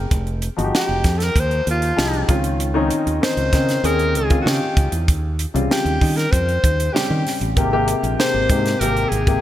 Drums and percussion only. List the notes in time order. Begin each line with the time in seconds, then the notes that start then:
0.11 kick, closed hi-hat
0.27 closed hi-hat
0.42 closed hi-hat
0.59 closed hi-hat
0.75 snare
1.04 kick, snare, closed hi-hat
1.20 snare, closed hi-hat
1.36 kick, closed hi-hat
1.51 closed hi-hat
1.67 closed hi-hat
1.82 closed hi-hat
1.99 snare
2.13 closed hi-hat
2.29 kick, closed hi-hat
2.44 closed hi-hat
2.60 closed hi-hat
2.91 closed hi-hat
3.07 closed hi-hat
3.23 snare
3.37 closed hi-hat
3.53 kick, snare, closed hi-hat
3.69 snare, closed hi-hat
3.84 closed hi-hat
3.99 closed hi-hat
4.15 closed hi-hat
4.30 kick, closed hi-hat
4.47 snare
4.77 kick, closed hi-hat
4.92 closed hi-hat
5.08 kick, closed hi-hat
5.39 closed hi-hat
5.56 closed hi-hat
5.71 snare
5.86 closed hi-hat
6.01 kick, open hi-hat
6.18 snare, closed hi-hat
6.33 kick, closed hi-hat
6.49 closed hi-hat
6.64 kick, closed hi-hat
6.80 closed hi-hat
6.96 snare
7.27 snare, open hi-hat
7.41 closed hi-hat
7.57 kick, closed hi-hat
7.88 closed hi-hat
8.04 closed hi-hat
8.20 snare
8.50 kick, closed hi-hat
8.66 snare, closed hi-hat
8.81 closed hi-hat
8.97 closed hi-hat
9.12 closed hi-hat
9.27 kick, closed hi-hat